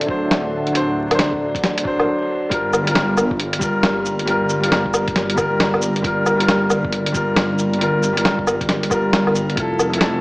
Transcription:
0.00 2.07 D1 medium
0.00 0.06 F#3 medium
0.00 0.08 D4 medium
0.00 2.08 D4 medium
0.00 2.08 A4 medium
0.00 0.10 C5 medium
0.00 0.23 C5 medium
0.00 2.08 E5 medium
0.00 2.08 F#5 medium
0.00 2.08 A5 medium
0.00 closed hi-hat medium
0.06 0.23 F#3 medium
0.06 0.24 D4 medium
0.06 kick medium
0.10 0.25 C5 medium
0.31 snare medium
0.31 closed hi-hat medium
0.67 closed hi-hat soft
0.72 1.05 F#3 medium
0.72 1.07 D4 medium
0.72 closed hi-hat medium
0.76 1.08 C5 medium
1.07 1.81 F#3 medium
1.11 1.83 D4 medium
1.11 1.85 C5 medium
1.11 closed hi-hat medium
1.11 low woodblock medium
1.19 snare loud
1.19 closed hi-hat medium
1.33 kick medium
1.55 kick loud
1.55 closed hi-hat soft
1.64 snare medium
1.64 closed hi-hat medium
1.78 closed hi-hat medium
1.83 1.99 F#3 medium
1.83 2.00 D4 medium
1.83 2.01 C5 medium
1.83 kick loud
2.00 low woodblock medium
2.49 9.55 G1 medium
2.49 2.82 G3 medium
2.49 9.57 G3 medium
2.49 2.84 F4 medium
2.49 2.85 A#4 medium
2.49 kick loud
2.49 closed hi-hat medium
2.73 cabasa medium
2.73 low woodblock medium
2.84 3.57 G3 medium
2.84 3.59 F4 medium
2.84 closed hi-hat medium
2.91 3.62 A#4 medium
2.95 snare loud
2.95 closed hi-hat medium
3.12 9.57 A#4 medium
3.17 cabasa medium
3.17 low woodblock medium
3.31 kick loud
3.40 closed hi-hat medium
3.53 closed hi-hat medium
3.59 3.75 G3 medium
3.59 3.76 F4 medium
3.59 kick loud
3.59 cabasa medium
3.63 3.78 A#4 loud
3.83 snare loud
3.83 closed hi-hat medium
4.06 cabasa medium
4.19 closed hi-hat soft
4.26 4.58 G3 medium
4.26 4.60 F4 medium
4.26 4.61 A#4 medium
4.26 closed hi-hat medium
4.49 cabasa medium
4.60 5.34 G3 medium
4.60 closed hi-hat medium
4.64 5.36 F4 medium
4.64 5.38 A#4 medium
4.72 snare loud
4.72 closed hi-hat medium
4.86 kick medium
4.94 cabasa medium
4.94 low woodblock medium
5.08 kick loud
5.08 closed hi-hat soft
5.16 snare medium
5.16 closed hi-hat medium
5.30 closed hi-hat medium
5.36 5.52 G3 medium
5.36 5.53 F4 medium
5.36 kick loud
5.36 cabasa medium
5.36 low woodblock medium
5.40 5.54 A#4 loud
5.60 snare loud
5.60 closed hi-hat medium
5.74 low woodblock medium
5.82 cabasa medium
5.96 closed hi-hat soft
6.02 6.34 G3 medium
6.02 6.37 F4 medium
6.02 6.38 A#4 loud
6.02 kick loud
6.02 closed hi-hat medium
6.26 cabasa medium
6.26 low woodblock medium
6.36 7.10 G3 medium
6.40 7.12 F4 medium
6.40 7.14 A#4 medium
6.40 closed hi-hat medium
6.49 snare loud
6.49 closed hi-hat medium
6.70 cabasa medium
6.70 low woodblock medium
6.85 kick loud
6.93 closed hi-hat medium
7.06 closed hi-hat medium
7.12 7.29 G3 medium
7.12 7.30 F4 medium
7.12 7.30 A#4 loud
7.12 kick loud
7.12 cabasa medium
7.36 snare loud
7.36 closed hi-hat medium
7.59 cabasa medium
7.73 closed hi-hat soft
7.78 8.11 G3 medium
7.78 8.13 F4 medium
7.78 8.14 A#4 loud
7.78 closed hi-hat medium
8.03 cabasa medium
8.13 8.87 G3 medium
8.17 8.89 F4 medium
8.17 8.91 A#4 medium
8.17 closed hi-hat medium
8.25 snare loud
8.25 closed hi-hat medium
8.39 kick medium
8.47 cabasa medium
8.47 low woodblock medium
8.61 kick loud
8.61 closed hi-hat soft
8.69 snare medium
8.69 closed hi-hat medium
8.83 closed hi-hat medium
8.90 9.05 G3 medium
8.90 9.07 F4 medium
8.90 kick loud
8.90 cabasa medium
8.90 low woodblock medium
8.94 9.08 A#4 loud
9.13 snare loud
9.13 closed hi-hat medium
9.27 low woodblock medium
9.35 cabasa medium
9.50 closed hi-hat soft
9.56 10.21 F1 medium
9.56 9.88 F3 medium
9.56 10.21 F3 medium
9.56 9.90 E4 medium
9.56 9.91 A4 loud
9.56 kick loud
9.56 closed hi-hat medium
9.78 10.21 G5 medium
9.78 cabasa medium
9.78 low woodblock medium
9.90 10.21 F3 medium
9.90 10.21 E4 medium
9.90 10.21 C5 medium
9.90 closed hi-hat medium
9.98 10.21 A4 medium
9.98 snare loud
9.98 closed hi-hat medium

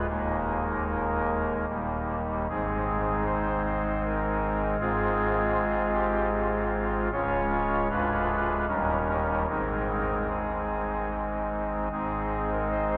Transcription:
0.09 1.65 D#1 medium
0.09 1.65 D#2 medium
0.09 1.65 G#3 soft
0.09 1.65 A#3 soft
0.09 1.65 D#4 soft
0.09 1.65 A#4 medium
1.69 2.47 D#1 soft
1.69 2.47 D#2 soft
1.69 2.46 G3 soft
1.69 2.47 A#3 soft
1.69 2.47 D#4 soft
2.49 4.76 G#1 medium
2.49 4.76 G#2 medium
2.49 4.76 G#3 soft
2.49 4.76 C4 soft
2.49 4.76 D#4 soft
2.49 3.25 G#4 medium
3.26 4.01 C5 medium
4.04 4.78 A#4 medium
4.80 7.09 G#1 medium
4.80 7.08 G#2 medium
4.80 7.08 G#3 medium
4.80 7.08 C4 medium
4.80 6.31 F4 medium
4.80 5.91 G#4 loud
5.94 6.27 G4 loud
6.33 7.10 F4 medium
7.12 7.88 C#1 medium
7.12 7.88 C#2 medium
7.12 7.88 G#3 medium
7.12 7.88 C#4 medium
7.12 7.88 F4 medium
7.12 7.88 C#5 loud
7.90 8.66 D1 medium
7.90 8.66 D2 medium
7.90 8.66 G#3 soft
7.90 8.66 D4 medium
7.90 8.66 F4 soft
7.90 8.66 B4 loud
8.68 9.46 D#1 medium
8.68 9.46 D#2 medium
8.68 9.46 G3 soft
8.68 9.46 C#4 soft
8.68 9.46 D#4 soft
8.68 9.46 A#4 medium
9.48 11.89 G#1 soft
9.48 11.88 G#2 soft
9.48 11.88 G#3 soft
9.48 11.88 C4 soft
9.48 11.88 D#4 soft
9.48 10.27 A#4 medium
10.29 11.09 G#4 medium
11.92 12.97 G#1 medium
11.92 12.97 G#2 medium
11.92 12.97 G#3 soft
11.92 12.97 C4 soft
11.92 12.97 D#4 soft
11.92 12.50 G#4 medium
12.52 12.69 A#4 medium
12.71 12.97 C5 medium

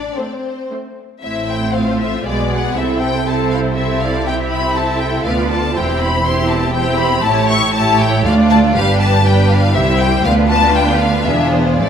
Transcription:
0.00 0.16 D4 medium
0.00 0.15 D5 medium
0.16 0.57 A3 soft
0.16 0.70 C4 soft
0.16 0.57 C4 soft
0.16 0.25 C5 soft
0.25 0.32 D5 soft
0.34 0.72 C5 soft
0.71 1.11 A3 soft
0.71 1.11 C4 soft
1.23 2.22 A1 medium
1.23 2.21 A2 soft
1.23 2.22 A3 soft
1.23 2.22 C4 soft
1.23 1.71 E4 soft
1.23 2.21 C5 medium
1.23 1.47 E5 medium
1.51 1.76 G5 medium
1.76 2.26 F4 soft
1.76 2.01 F5 medium
2.01 2.26 E5 medium
2.25 2.76 B1 soft
2.25 2.76 B2 medium
2.25 2.77 G#3 soft
2.25 2.76 B3 soft
2.25 2.76 G#4 soft
2.25 2.76 D5 medium
2.25 2.51 D5 medium
2.53 2.77 F#5 medium
2.76 5.22 C2 medium
2.76 5.22 C3 medium
2.76 3.25 C4 soft
2.76 3.26 E4 soft
2.76 3.26 A4 soft
2.76 3.26 C5 soft
2.76 3.02 E5 medium
3.00 3.25 G5 medium
3.27 3.75 C4 soft
3.27 3.75 E4 medium
3.27 3.75 A4 soft
3.27 3.76 C5 soft
3.27 3.52 A5 medium
3.51 3.59 F5 medium
3.75 4.25 C4 soft
3.75 4.25 E4 soft
3.75 4.26 A4 soft
3.75 3.85 C5 medium
3.75 4.00 E5 medium
4.01 4.26 D5 soft
4.01 4.26 F5 medium
4.26 5.24 C4 medium
4.26 5.24 E4 soft
4.26 4.76 G4 medium
4.26 5.25 E5 medium
4.26 4.35 G5 medium
4.51 4.76 B5 medium
4.75 5.24 A4 soft
4.75 5.01 A5 medium
5.00 5.25 G5 medium
5.25 5.74 D2 medium
5.25 5.75 B3 medium
5.25 5.75 F4 medium
5.25 5.50 B4 medium
5.25 5.75 D5 medium
5.25 5.49 F5 medium
5.50 5.75 A4 medium
5.50 5.75 A5 medium
5.75 7.25 E1 medium
5.75 7.25 E2 medium
5.75 6.23 C4 medium
5.75 6.22 E4 medium
5.75 6.24 G4 medium
5.75 6.24 C5 medium
5.75 6.00 G5 medium
6.00 6.25 B5 medium
6.23 6.73 C4 medium
6.23 6.73 E4 medium
6.23 6.74 G4 medium
6.23 6.74 C5 medium
6.23 6.50 C6 medium
6.50 6.75 A5 medium
6.74 7.24 C4 medium
6.74 7.23 E4 medium
6.74 7.24 G4 medium
6.74 7.24 C5 medium
6.74 6.99 G5 medium
6.98 7.24 B5 medium
7.25 8.23 A1 medium
7.25 8.23 A2 medium
7.25 7.73 A3 medium
7.25 7.74 E4 medium
7.25 7.75 G4 medium
7.25 7.75 C#5 medium
7.25 7.50 A5 medium
7.50 7.74 C#6 medium
7.75 8.24 A3 medium
7.75 8.24 E4 medium
7.75 8.25 G4 medium
7.75 8.25 C#5 medium
7.75 7.99 A5 medium
8.01 8.25 G5 medium
8.25 8.75 D2 medium
8.25 8.74 A3 medium
8.25 8.74 D4 medium
8.25 8.76 F4 medium
8.25 8.75 D5 medium
8.25 8.33 F5 medium
8.50 8.58 A5 medium
8.75 9.75 G1 medium
8.75 9.75 G2 medium
8.75 9.24 G3 medium
8.75 9.24 D4 medium
8.75 9.24 G4 medium
8.75 9.24 B4 medium
8.75 9.00 F5 loud
9.02 9.25 A5 medium
9.25 9.73 G3 medium
9.25 9.74 D4 medium
9.25 9.74 G4 medium
9.25 9.74 B4 medium
9.25 9.51 G5 medium
9.51 9.75 F5 medium
9.74 10.25 C2 medium
9.74 10.24 G3 medium
9.74 10.25 E4 medium
9.74 10.25 G4 medium
9.74 10.25 C5 medium
9.74 10.00 E5 medium
10.01 10.26 G5 medium
10.24 11.25 D2 medium
10.24 11.26 B3 medium
10.24 11.25 D4 medium
10.24 11.26 F4 medium
10.24 11.27 B4 medium
10.24 10.33 F5 medium
10.50 10.75 A5 medium
10.76 11.01 G5 medium
10.99 11.26 F5 medium
11.25 11.80 E1 medium
11.25 11.80 E2 medium
11.25 11.79 B3 medium
11.25 11.79 D4 medium
11.25 11.79 F4 medium
11.25 11.80 G#4 medium
11.25 11.52 E5 medium
11.52 11.79 C5 medium
11.78 11.89 A1 medium
11.78 11.89 A2 medium
11.78 11.89 A3 medium
11.78 11.89 C4 soft
11.78 11.89 E4 medium
11.78 11.89 A4 medium
11.78 11.89 D5 medium

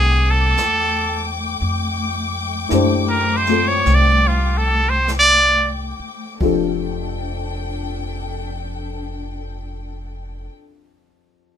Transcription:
0.00 0.53 C2 medium
0.00 1.61 A3 soft
0.00 6.37 A3 medium
0.00 1.62 C4 soft
0.00 1.62 D4 medium
0.00 1.61 E4 medium
0.00 1.62 F4 soft
0.00 0.32 G#4 loud
0.00 1.63 C5 medium
0.00 1.62 G5 medium
0.00 6.37 G5 medium
0.00 6.37 D6 loud
0.30 1.31 A4 medium
0.57 1.58 E2 medium
0.57 brush sweep soft
0.57 snare soft
0.57 hi-hat pedal medium
1.61 2.67 F2 medium
1.61 brush sweep soft
2.69 3.82 F#2 medium
2.69 3.46 A3 medium
2.69 6.41 D4 medium
2.69 6.41 E4 medium
2.69 6.41 G4 medium
2.69 brush sweep soft
2.69 snare soft
2.69 hi-hat pedal medium
2.74 6.43 C5 medium
3.09 3.38 A#4 medium
3.37 3.69 C5 medium
3.46 6.41 A3 soft
3.46 6.41 C4 soft
3.46 6.42 F4 soft
3.46 snare soft
3.51 6.42 A4 soft
3.68 3.96 C#5 medium
3.86 5.95 C2 medium
3.86 brush sweep soft
3.86 snare soft
3.94 4.29 D5 loud
4.28 4.59 F4 medium
4.58 4.91 A4 loud
4.89 5.09 C5 medium
5.08 brush sweep soft
5.08 snare soft
5.08 hi-hat pedal soft
5.19 5.70 D5 loud
5.99 muted upright bass stroke soft
6.40 10.47 F1 medium
6.40 10.51 F2 medium
6.40 10.52 F3 medium
6.40 10.48 D4 medium
6.40 10.53 D4 soft
6.40 10.53 G4 soft
6.40 10.48 A4 medium
6.40 10.48 G5 medium
6.40 kick medium
6.40 open hi-hat medium
6.44 10.54 A4 medium

